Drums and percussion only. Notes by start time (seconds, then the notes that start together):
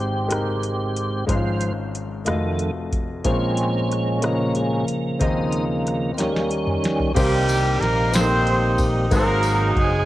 0.30 cross-stick, closed hi-hat
0.63 closed hi-hat
0.96 closed hi-hat
1.29 kick, closed hi-hat
1.61 closed hi-hat
1.95 closed hi-hat
2.26 cross-stick, closed hi-hat
2.59 closed hi-hat
2.92 kick, closed hi-hat
3.25 kick, closed hi-hat
3.57 closed hi-hat
3.92 cross-stick, closed hi-hat
4.22 cross-stick, closed hi-hat
4.55 closed hi-hat
4.88 closed hi-hat
5.21 kick, closed hi-hat
5.52 closed hi-hat
5.87 cross-stick, closed hi-hat
6.18 snare, closed hi-hat
6.36 snare
6.51 closed hi-hat
6.67 mid tom
6.84 snare, closed hi-hat
7.00 floor tom
7.16 kick, crash, ride, tambourine
7.49 ride, tambourine
7.82 snare, ride
8.13 snare, ride, tambourine
8.47 ride
8.78 kick, ride, tambourine
9.11 kick, ride, tambourine
9.43 ride, tambourine
9.76 kick, ride